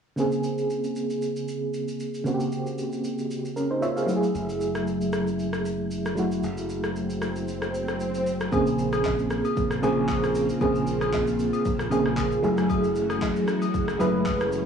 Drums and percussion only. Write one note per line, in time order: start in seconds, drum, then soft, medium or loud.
0.17 shaker medium
0.31 shaker medium
0.43 shaker medium
0.58 shaker medium
0.70 shaker medium
0.84 shaker soft
0.96 shaker medium
1.10 shaker medium
1.22 shaker medium
1.36 shaker medium
1.48 shaker medium
1.74 shaker medium
1.88 shaker medium
2.00 shaker medium
2.14 shaker medium
2.26 shaker medium
2.40 shaker medium
2.52 shaker medium
2.67 shaker medium
2.79 shaker medium
2.92 shaker medium
3.04 shaker medium
3.19 shaker medium
3.31 shaker medium
3.45 shaker medium
3.57 shaker medium
3.83 shaker medium
3.97 shaker medium
4.09 shaker medium
4.23 shaker medium
4.35 shaker medium
4.49 shaker medium
4.61 shaker medium
4.75 cross-stick medium
4.75 shaker medium
4.87 shaker medium
5.01 shaker soft
5.13 cross-stick loud
5.13 shaker medium
5.27 shaker medium
5.39 shaker medium
5.53 cross-stick medium
5.53 shaker medium
5.66 shaker medium
5.91 shaker medium
6.06 cross-stick medium
6.06 shaker medium
6.17 shaker medium
6.31 shaker medium
6.43 shaker medium
6.58 shaker medium
6.69 shaker medium
6.84 cross-stick medium
6.84 shaker medium
6.96 shaker medium
7.10 shaker medium
7.22 cross-stick loud
7.22 shaker medium
7.36 shaker medium
7.48 shaker medium
7.62 cross-stick medium
7.62 shaker medium
7.74 shaker medium
7.88 cross-stick medium
7.88 shaker medium
8.00 shaker medium
8.15 shaker medium
8.26 shaker medium
8.40 cross-stick loud
8.40 shaker medium
8.52 kick loud
8.52 high agogo medium
8.52 shaker medium
8.66 shaker medium
8.78 shaker medium
8.92 cross-stick medium
8.92 high agogo medium
8.92 shaker medium
9.04 kick medium
9.04 clap medium
9.04 low woodblock medium
9.04 shaker medium
9.19 shaker medium
9.30 cross-stick loud
9.30 shaker medium
9.45 high agogo medium
9.45 shaker medium
9.57 kick loud
9.57 shaker medium
9.71 cross-stick medium
9.71 shaker medium
9.83 high agogo medium
9.83 shaker loud
10.09 kick loud
10.09 clap medium
10.09 high agogo medium
10.09 shaker medium
10.23 cross-stick medium
10.23 shaker medium
10.35 shaker medium
10.49 shaker medium
10.61 kick loud
10.61 high agogo medium
10.61 shaker medium
10.75 shaker medium
10.87 shaker medium
11.01 cross-stick medium
11.01 high agogo medium
11.01 shaker medium
11.13 kick medium
11.13 clap medium
11.13 low woodblock medium
11.13 shaker medium
11.27 shaker medium
11.39 shaker medium
11.53 high agogo medium
11.53 shaker medium
11.66 kick loud
11.66 shaker medium
11.79 cross-stick medium
11.79 shaker medium
11.91 high agogo medium
11.91 shaker loud
12.06 cross-stick medium
12.17 kick loud
12.17 clap medium
12.17 high agogo medium
12.17 shaker medium
12.32 shaker medium
12.44 shaker medium
12.58 cross-stick loud
12.58 shaker medium
12.70 kick loud
12.70 high agogo medium
12.70 shaker medium
12.84 shaker medium
12.96 shaker medium
13.10 cross-stick medium
13.10 high agogo medium
13.10 shaker medium
13.22 kick medium
13.22 clap medium
13.22 low woodblock medium
13.22 shaker medium
13.36 shaker medium
13.48 cross-stick loud
13.48 shaker medium
13.62 high agogo medium
13.62 shaker medium
13.74 kick loud
13.74 shaker medium
13.88 cross-stick medium
13.88 shaker medium
14.00 high agogo medium
14.00 shaker loud
14.26 kick loud
14.26 clap medium
14.26 high agogo medium
14.26 shaker medium
14.41 cross-stick medium
14.41 shaker medium
14.52 shaker medium